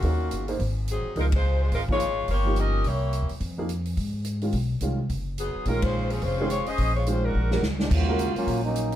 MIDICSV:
0, 0, Header, 1, 7, 480
1, 0, Start_track
1, 0, Key_signature, -5, "minor"
1, 0, Tempo, 281294
1, 53, Time_signature, 4, 2, 24, 8
1, 15283, End_track
2, 0, Start_track
2, 0, Title_t, "Saxophone section"
2, 0, Program_c, 0, 65
2, 0, Note_on_c, 0, 49, 71
2, 0, Note_on_c, 0, 58, 67
2, 0, Note_on_c, 0, 65, 71
2, 0, Note_on_c, 0, 66, 81
2, 843, Note_off_c, 0, 66, 0
2, 845, Note_off_c, 0, 49, 0
2, 846, Note_off_c, 0, 58, 0
2, 847, Note_off_c, 0, 65, 0
2, 1540, Note_on_c, 0, 63, 69
2, 1542, Note_on_c, 0, 60, 72
2, 1546, Note_on_c, 0, 54, 67
2, 1547, Note_on_c, 0, 68, 78
2, 1966, Note_off_c, 0, 63, 0
2, 1967, Note_off_c, 0, 60, 0
2, 1969, Note_off_c, 0, 54, 0
2, 1970, Note_off_c, 0, 68, 0
2, 2021, Note_on_c, 0, 63, 76
2, 2023, Note_on_c, 0, 65, 74
2, 2027, Note_on_c, 0, 70, 88
2, 2028, Note_on_c, 0, 56, 69
2, 2138, Note_off_c, 0, 63, 0
2, 2140, Note_off_c, 0, 65, 0
2, 2143, Note_off_c, 0, 56, 0
2, 2143, Note_off_c, 0, 70, 0
2, 2315, Note_on_c, 0, 65, 73
2, 2316, Note_on_c, 0, 56, 69
2, 2317, Note_on_c, 0, 63, 73
2, 2320, Note_on_c, 0, 72, 85
2, 2735, Note_off_c, 0, 65, 0
2, 2736, Note_off_c, 0, 56, 0
2, 2737, Note_off_c, 0, 63, 0
2, 2738, Note_off_c, 0, 72, 0
2, 2785, Note_on_c, 0, 63, 68
2, 2789, Note_on_c, 0, 56, 70
2, 2789, Note_on_c, 0, 72, 76
2, 2793, Note_on_c, 0, 65, 69
2, 2947, Note_off_c, 0, 63, 0
2, 2949, Note_off_c, 0, 56, 0
2, 2949, Note_off_c, 0, 72, 0
2, 2951, Note_off_c, 0, 65, 0
2, 2986, Note_on_c, 0, 65, 76
2, 2991, Note_on_c, 0, 70, 85
2, 2992, Note_on_c, 0, 63, 74
2, 2995, Note_on_c, 0, 56, 71
2, 3103, Note_off_c, 0, 65, 0
2, 3106, Note_off_c, 0, 70, 0
2, 3107, Note_off_c, 0, 63, 0
2, 3109, Note_off_c, 0, 56, 0
2, 3287, Note_on_c, 0, 56, 87
2, 3289, Note_on_c, 0, 65, 85
2, 3290, Note_on_c, 0, 73, 106
2, 3295, Note_on_c, 0, 63, 84
2, 3886, Note_off_c, 0, 56, 0
2, 3887, Note_off_c, 0, 65, 0
2, 3887, Note_off_c, 0, 73, 0
2, 3890, Note_off_c, 0, 63, 0
2, 3943, Note_on_c, 0, 58, 85
2, 3944, Note_on_c, 0, 65, 82
2, 3946, Note_on_c, 0, 67, 89
2, 3946, Note_on_c, 0, 73, 98
2, 4368, Note_off_c, 0, 58, 0
2, 4369, Note_off_c, 0, 65, 0
2, 4370, Note_off_c, 0, 67, 0
2, 4370, Note_off_c, 0, 73, 0
2, 4425, Note_on_c, 0, 61, 80
2, 4427, Note_on_c, 0, 70, 83
2, 4430, Note_on_c, 0, 67, 78
2, 4431, Note_on_c, 0, 75, 93
2, 4882, Note_off_c, 0, 61, 0
2, 4883, Note_off_c, 0, 70, 0
2, 4884, Note_off_c, 0, 67, 0
2, 4885, Note_off_c, 0, 75, 0
2, 4906, Note_on_c, 0, 64, 71
2, 4907, Note_on_c, 0, 67, 72
2, 4907, Note_on_c, 0, 73, 83
2, 4910, Note_on_c, 0, 58, 72
2, 5646, Note_off_c, 0, 64, 0
2, 5646, Note_off_c, 0, 67, 0
2, 5646, Note_off_c, 0, 73, 0
2, 5648, Note_off_c, 0, 58, 0
2, 9214, Note_on_c, 0, 63, 70
2, 9216, Note_on_c, 0, 54, 71
2, 9219, Note_on_c, 0, 59, 73
2, 9219, Note_on_c, 0, 68, 78
2, 9645, Note_off_c, 0, 54, 0
2, 9645, Note_off_c, 0, 63, 0
2, 9647, Note_off_c, 0, 59, 0
2, 9647, Note_off_c, 0, 68, 0
2, 9689, Note_on_c, 0, 65, 74
2, 9695, Note_on_c, 0, 61, 75
2, 9696, Note_on_c, 0, 56, 70
2, 9698, Note_on_c, 0, 70, 88
2, 9937, Note_off_c, 0, 61, 0
2, 9939, Note_off_c, 0, 56, 0
2, 9939, Note_off_c, 0, 65, 0
2, 9958, Note_on_c, 0, 61, 74
2, 9958, Note_on_c, 0, 72, 85
2, 9959, Note_on_c, 0, 56, 78
2, 9959, Note_on_c, 0, 65, 71
2, 9962, Note_off_c, 0, 70, 0
2, 10415, Note_off_c, 0, 61, 0
2, 10430, Note_off_c, 0, 72, 0
2, 10431, Note_off_c, 0, 56, 0
2, 10431, Note_off_c, 0, 65, 0
2, 10435, Note_on_c, 0, 61, 64
2, 10441, Note_on_c, 0, 53, 61
2, 10441, Note_on_c, 0, 68, 74
2, 10446, Note_on_c, 0, 60, 64
2, 10609, Note_off_c, 0, 61, 0
2, 10627, Note_on_c, 0, 56, 79
2, 10628, Note_off_c, 0, 53, 0
2, 10628, Note_on_c, 0, 65, 78
2, 10629, Note_off_c, 0, 68, 0
2, 10629, Note_on_c, 0, 72, 83
2, 10630, Note_on_c, 0, 61, 84
2, 10631, Note_off_c, 0, 60, 0
2, 11086, Note_off_c, 0, 65, 0
2, 11089, Note_off_c, 0, 56, 0
2, 11104, Note_off_c, 0, 61, 0
2, 11104, Note_off_c, 0, 72, 0
2, 11106, Note_on_c, 0, 65, 83
2, 11110, Note_on_c, 0, 56, 83
2, 11110, Note_on_c, 0, 60, 86
2, 11111, Note_on_c, 0, 73, 94
2, 11366, Note_off_c, 0, 65, 0
2, 11368, Note_off_c, 0, 56, 0
2, 11368, Note_off_c, 0, 60, 0
2, 11369, Note_off_c, 0, 73, 0
2, 11404, Note_on_c, 0, 61, 93
2, 11404, Note_on_c, 0, 75, 107
2, 11406, Note_on_c, 0, 72, 82
2, 11412, Note_on_c, 0, 68, 95
2, 11873, Note_off_c, 0, 61, 0
2, 11873, Note_off_c, 0, 75, 0
2, 11873, Note_on_c, 0, 65, 77
2, 11874, Note_off_c, 0, 72, 0
2, 11874, Note_on_c, 0, 60, 74
2, 11874, Note_on_c, 0, 73, 85
2, 11875, Note_on_c, 0, 56, 72
2, 11877, Note_off_c, 0, 68, 0
2, 12051, Note_off_c, 0, 56, 0
2, 12051, Note_off_c, 0, 60, 0
2, 12051, Note_off_c, 0, 65, 0
2, 12051, Note_off_c, 0, 73, 0
2, 12090, Note_on_c, 0, 56, 69
2, 12093, Note_on_c, 0, 65, 76
2, 12093, Note_on_c, 0, 72, 84
2, 12095, Note_on_c, 0, 61, 71
2, 12357, Note_off_c, 0, 56, 0
2, 12359, Note_off_c, 0, 65, 0
2, 12359, Note_off_c, 0, 72, 0
2, 12360, Note_off_c, 0, 61, 0
2, 12374, Note_on_c, 0, 66, 66
2, 12383, Note_on_c, 0, 62, 65
2, 12384, Note_on_c, 0, 70, 81
2, 12385, Note_on_c, 0, 56, 66
2, 13033, Note_off_c, 0, 66, 0
2, 13038, Note_off_c, 0, 62, 0
2, 13038, Note_off_c, 0, 70, 0
2, 13039, Note_off_c, 0, 56, 0
2, 15283, End_track
3, 0, Start_track
3, 0, Title_t, "Upright piano"
3, 0, Program_c, 1, 0
3, 63, Note_on_c, 1, 58, 48
3, 72, Note_on_c, 1, 63, 44
3, 78, Note_on_c, 1, 68, 49
3, 87, Note_on_c, 1, 73, 52
3, 765, Note_off_c, 1, 58, 0
3, 770, Note_off_c, 1, 63, 0
3, 773, Note_off_c, 1, 68, 0
3, 777, Note_off_c, 1, 73, 0
3, 824, Note_on_c, 1, 58, 52
3, 832, Note_on_c, 1, 63, 53
3, 835, Note_on_c, 1, 68, 49
3, 842, Note_on_c, 1, 72, 60
3, 998, Note_off_c, 1, 58, 0
3, 1001, Note_off_c, 1, 63, 0
3, 1003, Note_off_c, 1, 68, 0
3, 1007, Note_off_c, 1, 72, 0
3, 1984, Note_on_c, 1, 53, 49
3, 1986, Note_on_c, 1, 58, 45
3, 1996, Note_on_c, 1, 63, 44
3, 2002, Note_on_c, 1, 68, 51
3, 2235, Note_off_c, 1, 53, 0
3, 2236, Note_off_c, 1, 58, 0
3, 2241, Note_off_c, 1, 63, 0
3, 2244, Note_off_c, 1, 68, 0
3, 3227, Note_on_c, 1, 53, 60
3, 3240, Note_on_c, 1, 58, 52
3, 3248, Note_on_c, 1, 63, 52
3, 3253, Note_on_c, 1, 65, 62
3, 3400, Note_off_c, 1, 53, 0
3, 3407, Note_off_c, 1, 58, 0
3, 3411, Note_off_c, 1, 63, 0
3, 3414, Note_off_c, 1, 65, 0
3, 4182, Note_on_c, 1, 53, 52
3, 4196, Note_on_c, 1, 58, 52
3, 4202, Note_on_c, 1, 63, 54
3, 4211, Note_on_c, 1, 67, 63
3, 4819, Note_off_c, 1, 53, 0
3, 4826, Note_off_c, 1, 58, 0
3, 4829, Note_off_c, 1, 63, 0
3, 4834, Note_off_c, 1, 67, 0
3, 6108, Note_on_c, 1, 53, 51
3, 6112, Note_on_c, 1, 58, 50
3, 6118, Note_on_c, 1, 63, 45
3, 6127, Note_on_c, 1, 68, 56
3, 6282, Note_off_c, 1, 53, 0
3, 6284, Note_off_c, 1, 58, 0
3, 6287, Note_off_c, 1, 63, 0
3, 6292, Note_off_c, 1, 68, 0
3, 7541, Note_on_c, 1, 51, 50
3, 7553, Note_on_c, 1, 56, 48
3, 7561, Note_on_c, 1, 61, 44
3, 7564, Note_on_c, 1, 65, 54
3, 7719, Note_off_c, 1, 51, 0
3, 7725, Note_off_c, 1, 56, 0
3, 7729, Note_off_c, 1, 61, 0
3, 7731, Note_off_c, 1, 65, 0
3, 8224, Note_on_c, 1, 51, 49
3, 8230, Note_on_c, 1, 56, 45
3, 8238, Note_on_c, 1, 61, 46
3, 8243, Note_on_c, 1, 65, 51
3, 8477, Note_off_c, 1, 51, 0
3, 8480, Note_off_c, 1, 56, 0
3, 8484, Note_off_c, 1, 61, 0
3, 8487, Note_off_c, 1, 65, 0
3, 9674, Note_on_c, 1, 51, 54
3, 9679, Note_on_c, 1, 56, 48
3, 9683, Note_on_c, 1, 61, 49
3, 9697, Note_on_c, 1, 65, 59
3, 10373, Note_off_c, 1, 51, 0
3, 10376, Note_off_c, 1, 56, 0
3, 10378, Note_off_c, 1, 61, 0
3, 10385, Note_off_c, 1, 65, 0
3, 10930, Note_on_c, 1, 51, 67
3, 10930, Note_on_c, 1, 56, 56
3, 10935, Note_on_c, 1, 61, 57
3, 10947, Note_on_c, 1, 68, 68
3, 11093, Note_off_c, 1, 51, 0
3, 11093, Note_off_c, 1, 56, 0
3, 11096, Note_off_c, 1, 61, 0
3, 11102, Note_off_c, 1, 68, 0
3, 12060, Note_on_c, 1, 51, 54
3, 12069, Note_on_c, 1, 56, 49
3, 12078, Note_on_c, 1, 61, 47
3, 12085, Note_on_c, 1, 65, 58
3, 12539, Note_off_c, 1, 51, 0
3, 12543, Note_off_c, 1, 56, 0
3, 12547, Note_off_c, 1, 61, 0
3, 12551, Note_off_c, 1, 65, 0
3, 12823, Note_on_c, 1, 56, 62
3, 12834, Note_on_c, 1, 61, 51
3, 12840, Note_on_c, 1, 66, 54
3, 12851, Note_on_c, 1, 70, 61
3, 12998, Note_off_c, 1, 56, 0
3, 13004, Note_off_c, 1, 61, 0
3, 13007, Note_off_c, 1, 66, 0
3, 13012, Note_off_c, 1, 70, 0
3, 13782, Note_on_c, 1, 56, 54
3, 13790, Note_on_c, 1, 61, 52
3, 13798, Note_on_c, 1, 66, 53
3, 13807, Note_on_c, 1, 70, 59
3, 14415, Note_off_c, 1, 56, 0
3, 14420, Note_off_c, 1, 61, 0
3, 14424, Note_off_c, 1, 66, 0
3, 14428, Note_off_c, 1, 70, 0
3, 15283, End_track
4, 0, Start_track
4, 0, Title_t, "Trombone section"
4, 0, Program_c, 2, 61
4, 13317, Note_on_c, 2, 62, 80
4, 13320, Note_on_c, 2, 54, 64
4, 13325, Note_on_c, 2, 56, 59
4, 13326, Note_on_c, 2, 49, 66
4, 13491, Note_off_c, 2, 62, 0
4, 13493, Note_off_c, 2, 54, 0
4, 13495, Note_off_c, 2, 56, 0
4, 13496, Note_off_c, 2, 49, 0
4, 13513, Note_on_c, 2, 65, 86
4, 13518, Note_on_c, 2, 49, 78
4, 13520, Note_on_c, 2, 58, 77
4, 13523, Note_on_c, 2, 66, 100
4, 14247, Note_off_c, 2, 65, 0
4, 14251, Note_off_c, 2, 58, 0
4, 14267, Note_on_c, 2, 65, 102
4, 14268, Note_off_c, 2, 49, 0
4, 14270, Note_off_c, 2, 66, 0
4, 14271, Note_on_c, 2, 54, 90
4, 14271, Note_on_c, 2, 58, 92
4, 14275, Note_on_c, 2, 61, 87
4, 14707, Note_off_c, 2, 65, 0
4, 14710, Note_off_c, 2, 54, 0
4, 14710, Note_off_c, 2, 58, 0
4, 14711, Note_off_c, 2, 61, 0
4, 14741, Note_on_c, 2, 54, 75
4, 14743, Note_on_c, 2, 58, 77
4, 14744, Note_on_c, 2, 61, 77
4, 14744, Note_on_c, 2, 63, 90
4, 15283, Note_off_c, 2, 54, 0
4, 15283, Note_off_c, 2, 58, 0
4, 15283, Note_off_c, 2, 61, 0
4, 15283, Note_off_c, 2, 63, 0
4, 15283, End_track
5, 0, Start_track
5, 0, Title_t, "Upright bass"
5, 0, Program_c, 3, 32
5, 48, Note_on_c, 3, 39, 72
5, 497, Note_off_c, 3, 39, 0
5, 531, Note_on_c, 3, 31, 65
5, 979, Note_off_c, 3, 31, 0
5, 1013, Note_on_c, 3, 32, 82
5, 1724, Note_off_c, 3, 32, 0
5, 1973, Note_on_c, 3, 37, 80
5, 2887, Note_off_c, 3, 37, 0
5, 2930, Note_on_c, 3, 32, 84
5, 3846, Note_off_c, 3, 32, 0
5, 3891, Note_on_c, 3, 31, 74
5, 4807, Note_off_c, 3, 31, 0
5, 4850, Note_on_c, 3, 36, 78
5, 5449, Note_off_c, 3, 36, 0
5, 5493, Note_on_c, 3, 40, 51
5, 5629, Note_off_c, 3, 40, 0
5, 5639, Note_on_c, 3, 42, 54
5, 5797, Note_off_c, 3, 42, 0
5, 5807, Note_on_c, 3, 41, 73
5, 6725, Note_off_c, 3, 41, 0
5, 6775, Note_on_c, 3, 44, 79
5, 7689, Note_off_c, 3, 44, 0
5, 7731, Note_on_c, 3, 35, 79
5, 8181, Note_off_c, 3, 35, 0
5, 8208, Note_on_c, 3, 36, 69
5, 8660, Note_off_c, 3, 36, 0
5, 8697, Note_on_c, 3, 30, 77
5, 9408, Note_off_c, 3, 30, 0
5, 9650, Note_on_c, 3, 34, 80
5, 10566, Note_off_c, 3, 34, 0
5, 10613, Note_on_c, 3, 29, 84
5, 11325, Note_off_c, 3, 29, 0
5, 11574, Note_on_c, 3, 34, 79
5, 12487, Note_off_c, 3, 34, 0
5, 12539, Note_on_c, 3, 34, 83
5, 12984, Note_off_c, 3, 34, 0
5, 13018, Note_on_c, 3, 37, 71
5, 13463, Note_off_c, 3, 37, 0
5, 13495, Note_on_c, 3, 39, 84
5, 14203, Note_off_c, 3, 39, 0
5, 14455, Note_on_c, 3, 34, 81
5, 15283, Note_off_c, 3, 34, 0
5, 15283, End_track
6, 0, Start_track
6, 0, Title_t, "Muted upright bass strokes"
6, 1783, Note_on_c, 9, 29, 37
6, 1953, Note_off_c, 9, 29, 0
6, 9469, Note_on_c, 9, 29, 35
6, 9639, Note_off_c, 9, 29, 0
6, 11397, Note_on_c, 9, 29, 33
6, 11568, Note_off_c, 9, 29, 0
6, 14249, Note_on_c, 9, 29, 37
6, 14420, Note_off_c, 9, 29, 0
6, 15283, End_track
7, 0, Start_track
7, 0, Title_t, "Drums"
7, 39, Note_on_c, 9, 46, 39
7, 48, Note_on_c, 9, 36, 31
7, 210, Note_off_c, 9, 46, 0
7, 219, Note_off_c, 9, 36, 0
7, 528, Note_on_c, 9, 42, 46
7, 698, Note_off_c, 9, 42, 0
7, 817, Note_on_c, 9, 46, 36
7, 988, Note_off_c, 9, 46, 0
7, 1014, Note_on_c, 9, 36, 32
7, 1017, Note_on_c, 9, 46, 41
7, 1185, Note_off_c, 9, 36, 0
7, 1187, Note_off_c, 9, 46, 0
7, 1494, Note_on_c, 9, 42, 50
7, 1664, Note_off_c, 9, 42, 0
7, 1975, Note_on_c, 9, 46, 41
7, 1977, Note_on_c, 9, 36, 33
7, 2146, Note_off_c, 9, 46, 0
7, 2148, Note_off_c, 9, 36, 0
7, 2253, Note_on_c, 9, 51, 61
7, 2259, Note_on_c, 9, 36, 71
7, 2423, Note_off_c, 9, 51, 0
7, 2430, Note_off_c, 9, 36, 0
7, 2930, Note_on_c, 9, 46, 39
7, 2937, Note_on_c, 9, 36, 30
7, 3100, Note_off_c, 9, 46, 0
7, 3107, Note_off_c, 9, 36, 0
7, 3219, Note_on_c, 9, 36, 63
7, 3390, Note_off_c, 9, 36, 0
7, 3407, Note_on_c, 9, 42, 52
7, 3578, Note_off_c, 9, 42, 0
7, 3887, Note_on_c, 9, 46, 43
7, 3892, Note_on_c, 9, 36, 31
7, 4057, Note_off_c, 9, 46, 0
7, 4063, Note_off_c, 9, 36, 0
7, 4369, Note_on_c, 9, 42, 45
7, 4539, Note_off_c, 9, 42, 0
7, 4848, Note_on_c, 9, 46, 44
7, 4852, Note_on_c, 9, 36, 32
7, 5019, Note_off_c, 9, 46, 0
7, 5023, Note_off_c, 9, 36, 0
7, 5335, Note_on_c, 9, 42, 46
7, 5505, Note_off_c, 9, 42, 0
7, 5616, Note_on_c, 9, 46, 33
7, 5787, Note_off_c, 9, 46, 0
7, 5809, Note_on_c, 9, 46, 43
7, 5815, Note_on_c, 9, 36, 32
7, 5980, Note_off_c, 9, 46, 0
7, 5985, Note_off_c, 9, 36, 0
7, 6294, Note_on_c, 9, 42, 48
7, 6465, Note_off_c, 9, 42, 0
7, 6576, Note_on_c, 9, 46, 37
7, 6747, Note_off_c, 9, 46, 0
7, 6774, Note_on_c, 9, 46, 46
7, 6776, Note_on_c, 9, 36, 32
7, 6945, Note_off_c, 9, 46, 0
7, 6946, Note_off_c, 9, 36, 0
7, 7243, Note_on_c, 9, 42, 51
7, 7413, Note_off_c, 9, 42, 0
7, 7533, Note_on_c, 9, 46, 34
7, 7703, Note_off_c, 9, 46, 0
7, 7720, Note_on_c, 9, 46, 43
7, 7732, Note_on_c, 9, 36, 33
7, 7891, Note_off_c, 9, 46, 0
7, 7902, Note_off_c, 9, 36, 0
7, 8199, Note_on_c, 9, 42, 47
7, 8369, Note_off_c, 9, 42, 0
7, 8693, Note_on_c, 9, 46, 46
7, 8695, Note_on_c, 9, 36, 34
7, 8864, Note_off_c, 9, 46, 0
7, 8866, Note_off_c, 9, 36, 0
7, 9176, Note_on_c, 9, 42, 52
7, 9347, Note_off_c, 9, 42, 0
7, 9648, Note_on_c, 9, 46, 42
7, 9654, Note_on_c, 9, 36, 29
7, 9819, Note_off_c, 9, 46, 0
7, 9825, Note_off_c, 9, 36, 0
7, 9935, Note_on_c, 9, 51, 69
7, 9939, Note_on_c, 9, 36, 77
7, 10105, Note_off_c, 9, 51, 0
7, 10109, Note_off_c, 9, 36, 0
7, 10412, Note_on_c, 9, 46, 40
7, 10582, Note_off_c, 9, 46, 0
7, 10604, Note_on_c, 9, 46, 39
7, 10615, Note_on_c, 9, 36, 32
7, 10775, Note_off_c, 9, 46, 0
7, 10786, Note_off_c, 9, 36, 0
7, 11088, Note_on_c, 9, 42, 49
7, 11259, Note_off_c, 9, 42, 0
7, 11370, Note_on_c, 9, 46, 37
7, 11540, Note_off_c, 9, 46, 0
7, 11568, Note_on_c, 9, 46, 41
7, 11577, Note_on_c, 9, 36, 32
7, 11739, Note_off_c, 9, 46, 0
7, 11747, Note_off_c, 9, 36, 0
7, 12054, Note_on_c, 9, 42, 46
7, 12225, Note_off_c, 9, 42, 0
7, 12819, Note_on_c, 9, 38, 53
7, 12990, Note_off_c, 9, 38, 0
7, 13014, Note_on_c, 9, 38, 67
7, 13184, Note_off_c, 9, 38, 0
7, 13301, Note_on_c, 9, 38, 66
7, 13472, Note_off_c, 9, 38, 0
7, 13496, Note_on_c, 9, 36, 77
7, 13498, Note_on_c, 9, 49, 79
7, 13667, Note_off_c, 9, 36, 0
7, 13669, Note_off_c, 9, 49, 0
7, 13972, Note_on_c, 9, 42, 48
7, 14143, Note_off_c, 9, 42, 0
7, 14266, Note_on_c, 9, 46, 43
7, 14436, Note_off_c, 9, 46, 0
7, 14456, Note_on_c, 9, 36, 35
7, 14462, Note_on_c, 9, 46, 46
7, 14627, Note_off_c, 9, 36, 0
7, 14633, Note_off_c, 9, 46, 0
7, 14940, Note_on_c, 9, 42, 53
7, 15111, Note_off_c, 9, 42, 0
7, 15224, Note_on_c, 9, 46, 41
7, 15283, Note_off_c, 9, 46, 0
7, 15283, End_track
0, 0, End_of_file